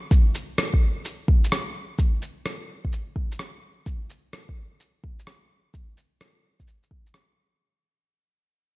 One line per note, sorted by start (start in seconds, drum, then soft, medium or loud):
0.11 kick loud
0.11 shaker soft
0.35 shaker soft
0.58 cross-stick loud
0.58 shaker soft
0.74 kick medium
1.05 shaker soft
1.28 kick loud
1.44 shaker soft
1.52 cross-stick loud
1.52 shaker soft
1.99 kick loud
1.99 shaker soft
2.22 shaker soft
2.46 cross-stick medium
2.46 shaker soft
2.85 kick medium
2.92 shaker soft
3.16 kick medium
3.32 shaker soft
3.39 cross-stick medium
3.39 shaker soft
3.86 kick loud
3.86 shaker soft
4.10 shaker medium
4.33 cross-stick medium
4.33 shaker soft
4.49 kick medium
4.80 shaker soft
5.04 kick medium
5.19 shaker soft
5.27 cross-stick medium
5.27 shaker soft
5.74 kick loud
5.74 shaker medium
5.97 shaker soft
6.21 cross-stick medium
6.21 shaker medium
6.60 kick medium
6.60 shaker soft
6.67 shaker medium
6.83 shaker soft
6.91 kick medium
7.06 shaker medium
7.14 cross-stick medium
7.14 shaker medium